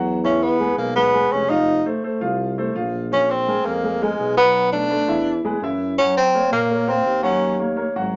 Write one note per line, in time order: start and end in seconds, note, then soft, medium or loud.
0.00 0.72 E2 medium
0.00 0.18 F#3 medium
0.00 0.18 F#4 medium
0.00 0.18 F#5 medium
0.24 0.54 E3 medium
0.24 0.44 C#4 medium
0.24 0.54 E4 medium
0.24 0.54 E5 medium
0.43 0.78 B3 medium
0.60 0.89 G#3 medium
0.60 0.90 G#4 medium
0.60 0.90 B4 medium
0.77 1.28 B1 medium
0.77 0.95 A#3 medium
0.96 1.11 G#3 medium
0.96 1.33 B3 medium
0.96 1.11 G#4 medium
0.96 1.11 B4 medium
1.14 1.43 G#3 medium
1.14 1.44 G#4 medium
1.14 1.44 B4 medium
1.31 1.89 F1 medium
1.31 1.51 C#4 medium
1.50 1.79 F3 medium
1.50 1.86 D#4 medium
1.50 1.79 F4 medium
1.50 1.80 F5 medium
1.86 2.01 A3 medium
1.86 2.01 A4 medium
1.86 2.01 C5 medium
2.04 2.18 A3 medium
2.04 2.19 A4 medium
2.04 2.19 C5 medium
2.21 2.71 C2 medium
2.21 2.51 F3 medium
2.21 2.51 F4 medium
2.21 2.51 F5 medium
2.58 2.72 A3 medium
2.58 2.73 A4 medium
2.58 2.73 C5 medium
2.75 3.59 A#1 medium
2.75 3.05 F3 medium
2.75 3.05 F4 medium
2.75 3.05 F5 medium
3.11 3.41 F3 medium
3.11 3.32 C#4 medium
3.11 3.41 F4 medium
3.11 3.41 F5 medium
3.30 3.67 C4 medium
3.48 3.77 G#3 medium
3.48 3.77 G#4 medium
3.48 3.77 A#4 medium
3.65 4.15 F2 medium
3.65 4.04 A#3 medium
3.83 3.98 G#3 medium
3.83 3.98 G#4 medium
3.83 3.99 A#4 medium
4.02 4.31 G#3 medium
4.02 4.37 G#3 medium
4.02 4.31 G#4 medium
4.02 4.31 A#4 medium
4.19 5.03 B1 medium
4.37 4.66 F#3 medium
4.37 4.71 B3 loud
4.37 4.66 F#4 medium
4.37 4.67 F#5 medium
4.72 4.87 A3 medium
4.72 5.40 D4 loud
4.72 4.87 A4 medium
4.72 4.88 B4 medium
4.90 5.05 A3 medium
4.90 5.05 A4 medium
4.90 5.06 B4 medium
5.08 5.42 E2 medium
5.08 5.38 E3 medium
5.08 5.38 E4 medium
5.08 5.38 E5 medium
5.44 5.61 E2 medium
5.44 5.59 G#3 medium
5.44 5.59 G#4 medium
5.44 5.60 B4 medium
5.61 6.19 F#2 medium
5.61 5.92 E3 medium
5.61 5.92 E4 medium
5.61 5.93 E5 medium
5.98 6.28 F#3 medium
5.98 6.15 C#4 loud
5.98 6.28 F#4 medium
5.98 6.28 F#5 medium
6.17 6.50 C4 loud
6.34 6.63 A#3 medium
6.34 6.64 A#4 medium
6.34 6.64 C#5 medium
6.51 7.02 A#2 medium
6.51 6.91 A#3 medium
6.70 6.85 A#3 medium
6.70 6.85 A#4 medium
6.70 6.85 C#5 medium
6.87 7.17 A#3 medium
6.87 7.23 C4 loud
6.87 7.17 A#4 medium
6.87 7.17 F5 medium
7.05 7.89 D#2 medium
7.22 7.52 F#3 medium
7.22 7.57 C#4 medium
7.22 7.53 F#4 medium
7.22 7.53 F#5 medium
7.59 7.74 A#3 medium
7.59 7.74 A#4 medium
7.59 7.74 C#5 medium
7.77 7.92 A#3 medium
7.77 7.92 A#4 medium
7.77 7.92 C#5 medium
7.95 8.16 G#1 medium
7.95 8.16 F#3 medium
7.95 8.16 F#4 medium
7.95 8.16 F#5 medium